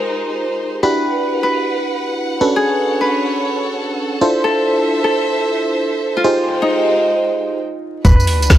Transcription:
Already playing: violin section G#3 D#4 C5, fm electric piano D#4 F4 G4 G#4 C5, harp G#4 A#4
0.83 fm electric piano D4 E4 F#4 G4 B4, harp B4, violin section B4 F#5
1.43 harp B4
2.41 fm electric piano C#4 D4 F#4 A4 B4, violin section A4 C#5
2.56 harp G#4
3.01 harp B4
4.21 fm electric piano D4 E4 F4 A4 C5, violin section C5 E5
4.44 harp A4
5.04 harp A4
6.17 harp F4
6.24 violin section G#3 D#4 C5 G5, fm electric piano D#4 F4 G4 G#4 C5
6.62 harp D#4
8.04 fm bass E1, violin section G3 D4 F#4 B4, harp B4, kick, tambourine, sub drop
8.20 tambourine
8.27 open hi-hat
8.42 closed hi-hat, tambourine
8.50 kick, snare

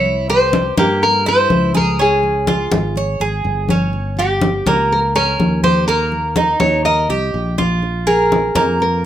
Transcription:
Already playing: fretless electric bass C2, cuban tres E4, nylon-string guitar C#5
0.06 high conga
0.30 cuban tres G4, nylon-string guitar C5, high conga
0.53 high conga
0.77 fretless electric bass G2, cuban tres A#3, nylon-string guitar G4, high conga
1.02 nylon-string guitar A#4, high conga
1.26 cuban tres E4, nylon-string guitar C5, high conga
1.50 fretless electric bass C#2, high conga
1.74 cuban tres G#4, nylon-string guitar A#4, high conga
1.99 cuban tres C#4, nylon-string guitar G#4, high conga
2.23 high conga
2.47 cuban tres F4, high conga
2.72 fretless electric bass G#1, high conga
2.96 cuban tres C#5, high conga
3.20 fretless electric bass G#1, cuban tres G#4, high conga
3.44 fretless electric bass G1, high conga
3.69 cuban tres C#4, high conga
3.93 high conga
4.17 nylon-string guitar G4, cuban tres G4, high conga
4.42 high conga
4.66 fretless electric bass C#2, cuban tres A#3, high conga
4.91 nylon-string guitar A#4, high conga
5.15 cuban tres C#4, nylon-string guitar A#4, high conga
5.40 fretless electric bass D#2, high conga
5.64 cuban tres G4, nylon-string guitar C5, high conga
5.88 cuban tres A#3, nylon-string guitar A#4, high conga
6.12 high conga
6.36 cuban tres D#4, high conga
6.60 fretless electric bass D#2, nylon-string guitar C#5, high conga
6.85 cuban tres A#4, nylon-string guitar D#5, high conga
7.09 fretless electric bass C2, cuban tres G4, high conga
7.34 fretless electric bass A#1, high conga
7.58 cuban tres F4, high conga
7.83 high conga
8.07 nylon-string guitar G#4, cuban tres A#4, high conga
8.32 high conga
8.55 fretless electric bass F2, cuban tres A#3, high conga
8.80 nylon-string guitar A#4, high conga

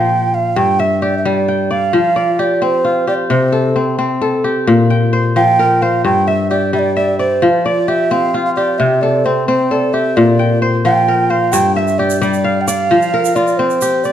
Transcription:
Already playing: kora A#2 F3 C4 G4 C5 G5, ocarina G5
0.34 ocarina F5
0.56 kora G2, ocarina G5
0.80 kora E5, ocarina E5
1.02 kora G4, ocarina D5
1.18 ocarina E5
1.25 kora G3, ocarina D5
1.48 kora G5
1.71 kora D5, ocarina F5
1.93 kora F3
2.16 kora D5
2.39 kora G4, ocarina D5
2.62 kora C4, ocarina C5
2.85 kora F4
3.07 kora G4, ocarina D5
3.30 kora C3, ocarina C5
3.52 kora A4
3.76 kora C4
3.99 kora C4
4.22 kora A4
4.44 kora G4
4.67 kora A#2
4.90 kora G5
5.13 kora C5
5.36 kora F3, ocarina G5
5.59 kora A#4
5.82 kora C5, ocarina F5
6.04 kora G2, ocarina G5
6.28 ocarina E5, kora E5
6.50 kora G4, ocarina D5
6.73 kora G3, ocarina E5
6.79 ocarina D5
6.96 ocarina D5, kora E5
7.19 ocarina C5, kora D5
7.42 kora F3
7.65 ocarina D5, kora D5
7.88 kora G4, ocarina E5
8.11 kora C4, ocarina F5
8.34 kora F4
8.45 ocarina F5
8.56 kora G4, ocarina D5
8.78 kora C3, ocarina E5
9.01 kora A4, ocarina D5
9.25 kora C4, ocarina C5
9.47 kora C4, ocarina C5
9.71 kora A4, ocarina D5
9.93 kora G4, ocarina E5
10.16 kora A#2, ocarina D5
10.39 kora G5
10.62 kora C5
10.85 kora F3, ocarina G5
11.08 kora A#4
11.30 kora C5, ocarina F5
11.52 kora G2, ocarina G5, shaker
11.75 kora E5, ocarina E5 F5
11.88 shaker
11.98 kora G4, ocarina D5
12.10 shaker
12.21 kora G3 D5, ocarina D5, shaker
12.34 shaker
12.44 kora F5
12.61 ocarina G5
12.67 kora D5, ocarina F5, shaker
12.91 kora F3
13.02 shaker
13.14 kora A#4
13.25 shaker
13.35 kora F4, ocarina D5, shaker
13.47 shaker
13.58 kora C4, ocarina C5
13.70 shaker
13.81 kora G4, shaker
14.04 ocarina D5, kora D5, shaker

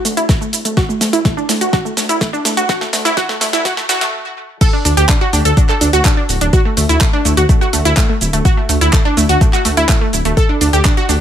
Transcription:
0.05 detuned saw bass D2, synth pluck A3, open hi-hat, shaker
0.17 detuned saw bass D2, synth pluck E4, closed hi-hat, shaker
0.29 synth pluck A3, kick, snare, closed hi-hat, shaker
0.41 synth pluck A3, shaker
0.53 detuned saw bass D1, open hi-hat, shaker
0.65 detuned saw bass D1, synth pluck A3, closed hi-hat, shaker
0.77 synth pluck F#4, kick, snare, closed hi-hat, shaker
0.89 synth pluck A3, shaker
1.01 detuned saw bass D2, synth pluck A3, snare, open hi-hat, shaker
1.13 detuned saw bass D2, synth pluck E4, closed hi-hat, shaker
1.25 synth pluck A3, kick, snare, closed hi-hat, shaker
1.37 synth pluck D4, shaker
1.49 detuned saw bass D2, synth pluck A3, snare, open hi-hat, shaker
1.61 detuned saw bass D2, synth pluck F#4, closed hi-hat, shaker
1.73 synth pluck F#4, kick, snare, closed hi-hat, shaker
1.85 synth pluck A3, shaker
1.97 detuned saw bass D2, synth pluck A3, snare, open hi-hat, shaker
2.09 detuned saw bass D2, synth pluck E4, closed hi-hat, shaker
2.21 synth pluck A3, kick, snare, closed hi-hat, shaker
2.33 synth pluck D4, shaker
2.45 detuned saw bass D1, synth pluck A3, snare, open hi-hat, shaker
2.57 detuned saw bass D1, synth pluck F#4, closed hi-hat, shaker
2.69 synth pluck F#4, kick, snare, closed hi-hat, shaker
2.81 synth pluck A3, snare, shaker
2.93 detuned saw bass D2, synth pluck A3, snare, open hi-hat, shaker
3.05 detuned saw bass D2, synth pluck E4, snare, closed hi-hat, shaker
3.17 synth pluck F#4, kick, snare, closed hi-hat, shaker
3.29 synth pluck A3, snare, shaker
3.41 detuned saw bass D2, synth pluck A3, snare, open hi-hat, shaker
3.53 detuned saw bass D2, synth pluck E4, snare, closed hi-hat, shaker
3.65 synth pluck F#4, kick, snare, closed hi-hat, shaker
3.77 synth pluck A3, snare, shaker
3.89 detuned saw bass D2, synth pluck F#4, snare, open hi-hat, shaker
4.01 detuned saw bass A1, synth pluck A3, snare, closed hi-hat, shaker
4.61 synth pluck A4, kick, closed hi-hat, crash, shaker
4.73 synth pluck D4
4.85 detuned saw bass D2, synth pluck D4, open hi-hat, shaker
4.97 detuned saw bass D2, synth pluck G4, closed hi-hat, shaker
5.09 synth pluck D4, kick, clap, closed hi-hat, shaker
5.21 synth pluck F#4
5.33 detuned saw bass D2, synth pluck D4, open hi-hat, shaker
5.45 detuned saw bass D2, synth pluck A4, closed hi-hat, shaker
5.57 synth pluck D4, kick, closed hi-hat, shaker
5.69 synth pluck A4, clap, shaker
5.81 detuned saw bass D2, synth pluck D4, open hi-hat, shaker
5.93 detuned saw bass D2, synth pluck F#4, closed hi-hat, shaker
6.05 synth pluck D4, kick, clap, closed hi-hat, shaker
6.17 synth pluck D4
6.29 detuned saw bass D1, open hi-hat, shaker
6.41 detuned saw bass D1, synth pluck D4, closed hi-hat, shaker
6.53 synth pluck F#4, kick, closed hi-hat, shaker
6.65 synth pluck A3
6.77 detuned saw bass D2, synth pluck A3, open hi-hat, shaker
6.89 detuned saw bass D2, synth pluck E4, closed hi-hat, shaker
7.01 synth pluck A3, kick, clap, closed hi-hat, shaker
7.13 synth pluck D4
7.25 detuned saw bass D2, synth pluck A3, open hi-hat, shaker
7.37 detuned saw bass D2, synth pluck F#4, closed hi-hat, shaker
7.49 synth pluck A3, kick, closed hi-hat, shaker
7.61 synth pluck F#4, shaker
7.73 detuned saw bass D2, synth pluck A3, open hi-hat, shaker
7.85 detuned saw bass D2, synth pluck E4, closed hi-hat, shaker
7.97 synth pluck A3, kick, clap, closed hi-hat, shaker
8.09 synth pluck A3
8.21 detuned saw bass D1, open hi-hat, shaker
8.33 detuned saw bass D1, synth pluck A3, closed hi-hat, shaker
8.45 synth pluck F#4, kick, closed hi-hat, shaker
8.57 synth pluck A3
8.69 detuned saw bass D2, synth pluck A3, open hi-hat, shaker
8.81 detuned saw bass D2, synth pluck E4, closed hi-hat, shaker
8.93 synth pluck A3, kick, clap, closed hi-hat, shaker
9.05 synth pluck D4
9.17 detuned saw bass D2, synth pluck A3, open hi-hat, shaker
9.29 detuned saw bass D2, synth pluck F#4, closed hi-hat, shaker
9.41 synth pluck A3, kick, closed hi-hat, shaker
9.53 synth pluck F#4, clap, shaker
9.65 detuned saw bass D2, synth pluck A3, open hi-hat, shaker
9.77 detuned saw bass D2, synth pluck E4, closed hi-hat, shaker
9.89 synth pluck A3, kick, clap, closed hi-hat, shaker
10.01 synth pluck A3
10.13 detuned saw bass D1, open hi-hat, shaker
10.25 detuned saw bass D1, synth pluck A3, closed hi-hat, shaker
10.37 synth pluck A4, kick, closed hi-hat, shaker
10.49 synth pluck D4
10.61 detuned saw bass D2, synth pluck D4, open hi-hat, shaker
10.73 detuned saw bass D2, synth pluck G4, closed hi-hat, shaker
10.85 synth pluck D4, kick, clap, closed hi-hat, shaker
10.97 synth pluck F#4
11.09 detuned saw bass D2, synth pluck D4, open hi-hat, shaker

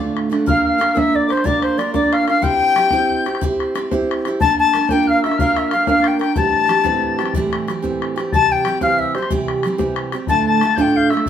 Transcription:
Already playing: steel-string acoustic guitar A2 D3 A3 D4 F4, flute D5, tin whistle D6
0.00 steel-string acoustic guitar D2
0.06 bodhran
0.17 bodhran
0.30 steel-string acoustic guitar D3 A3 D4 F4, bodhran
0.46 steel-string acoustic guitar A#3 D4 F4 A#4, flute F5, tin whistle F6, bodhran
0.64 tin whistle F6, bodhran
0.68 flute F5
0.78 steel-string acoustic guitar A#3 D4 F4 A#4, bodhran
0.95 steel-string acoustic guitar A#3 D4 F4 A#4, flute E5, tin whistle E6, bodhran
1.15 flute D5, tin whistle D6, bodhran
1.25 steel-string acoustic guitar A#4, tin whistle D6
1.30 steel-string acoustic guitar D4 F4, flute C5, tin whistle C6, bodhran
1.37 bodhran
1.44 steel-string acoustic guitar A#3 D4 F4 A#4, flute D5, tin whistle D6, bodhran
1.62 flute C5, tin whistle C6, bodhran
1.78 steel-string acoustic guitar A#3 D4 F4 A#4, flute D5, bodhran
1.94 steel-string acoustic guitar A#3 D4 F4 A#4, flute D5, tin whistle D6, bodhran
2.04 bodhran
2.13 flute F5, tin whistle F6, bodhran
2.27 steel-string acoustic guitar D4 F4 A#4, flute F5, tin whistle F6, bodhran
2.42 steel-string acoustic guitar C4 E4 G4 C5, flute G5, tin whistle G6, bodhran
2.61 bodhran
2.76 steel-string acoustic guitar C4 E4 G4 C5, bodhran
2.91 steel-string acoustic guitar C4 E4 G4 C5, bodhran
3.10 bodhran
3.26 steel-string acoustic guitar E4 G4 C5, bodhran
3.35 bodhran
3.41 steel-string acoustic guitar C4 E4 G4 C5, bodhran
3.60 bodhran
3.75 steel-string acoustic guitar C4 E4 G4 C5, bodhran
3.91 steel-string acoustic guitar C4 E4 G4 C5, bodhran
4.01 bodhran
4.11 bodhran
4.25 steel-string acoustic guitar E4 G4 C5, bodhran
4.41 steel-string acoustic guitar A#3 D4 F4 A#4, flute A5, tin whistle A6, bodhran
4.59 flute A5, tin whistle A6, bodhran
4.74 steel-string acoustic guitar A#3 D4 F4 A#4, bodhran
4.88 steel-string acoustic guitar F4 A#4, flute A5, tin whistle G6, bodhran
4.92 steel-string acoustic guitar A#3 D4, flute G5
5.07 flute F5, tin whistle F6, bodhran
5.22 steel-string acoustic guitar A#4, flute E5, tin whistle E6, bodhran
5.26 steel-string acoustic guitar D4 F4
5.31 bodhran
5.37 steel-string acoustic guitar A#3 D4, flute F5, tin whistle F6, bodhran
5.42 steel-string acoustic guitar F4 A#4
5.55 flute E5, tin whistle E6, bodhran
5.68 steel-string acoustic guitar A#3, tin whistle F6, bodhran
5.72 steel-string acoustic guitar D4 F4 A#4, flute F5
5.86 steel-string acoustic guitar A#3 D4 F4 A#4, flute F5, tin whistle F6, bodhran
5.96 bodhran
6.02 tin whistle G6 A6, bodhran
6.08 flute G5
6.19 steel-string acoustic guitar F4 A#4, flute G5, tin whistle G6, bodhran
6.23 steel-string acoustic guitar D4
6.36 steel-string acoustic guitar A2 E3 G3 C4 G4, flute A5, tin whistle A6, bodhran
6.55 bodhran
6.67 steel-string acoustic guitar E3 G3 C4 G4, bodhran
6.84 steel-string acoustic guitar A2 E3 G3 C4 G4, bodhran
7.03 bodhran
7.19 steel-string acoustic guitar G3 C4 G4, bodhran
7.25 bodhran
7.34 steel-string acoustic guitar A2 E3 G3 C4 G4, bodhran
7.53 bodhran
7.68 steel-string acoustic guitar E3 G3 C4 G4, bodhran
7.82 steel-string acoustic guitar A2 E3 G3 C4 G4, bodhran
7.92 bodhran
8.02 bodhran
8.16 steel-string acoustic guitar G3 C4 G4, bodhran
8.32 steel-string acoustic guitar C3 E3 G3 C4 G4, flute A5, tin whistle A6, bodhran
8.50 flute G5, tin whistle G6, bodhran
8.65 steel-string acoustic guitar E3 G3 C4 G4, bodhran
8.81 steel-string acoustic guitar C3 E3 G3 C4 G4, flute F5, tin whistle F6, bodhran
8.99 flute E5, tin whistle E6, bodhran
9.15 steel-string acoustic guitar G3 C4 G4, flute C5, tin whistle C6, bodhran
9.22 bodhran
9.30 steel-string acoustic guitar C3 E3 G3 C4 G4, bodhran
9.48 bodhran
9.63 steel-string acoustic guitar E3 G3 C4, bodhran
9.68 steel-string acoustic guitar G4
9.78 steel-string acoustic guitar C3 E3 G3 C4 G4, bodhran
9.88 bodhran
9.96 bodhran
10.12 steel-string acoustic guitar G3 C4 G4, bodhran
10.27 steel-string acoustic guitar D2 A2 D3 A3 D4 F4, flute A5, tin whistle A6, bodhran
10.46 flute A5, tin whistle A6, bodhran
10.61 steel-string acoustic guitar D3 A3 D4 F4, bodhran
10.76 steel-string acoustic guitar D3 A3 D4 F4, flute A5, tin whistle G6, bodhran
10.80 steel-string acoustic guitar D2 A2, flute G5
10.96 flute F5, bodhran
11.09 steel-string acoustic guitar A3 D4 F4, flute E5, tin whistle E6, bodhran
11.14 steel-string acoustic guitar D3, bodhran
11.26 bodhran

